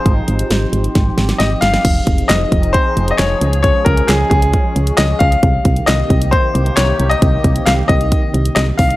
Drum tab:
CC |----------------|x---------------|----------------|----------------|
HH |x-xxx-xxx-xxx-xx|x-xxx-xxx-xxx-xx|x-xxx-xxx-xxx-xx|x-xxx-xxx-xxx-xx|
CP |----------------|----x-------x---|----x-------x---|----x-------x---|
SD |----o---o-ooo-oo|----o-------o---|----o-------o---|----o-------o---|
BD |o-------o-------|o-o---o-o-------|o-o---o-o-----o-|o-o---o-o-------|

CC |----------------|
HH |x-xxx-xxx-xxx-ox|
CP |----x-------x---|
SD |----o-------o---|
BD |o-o---o-o-----o-|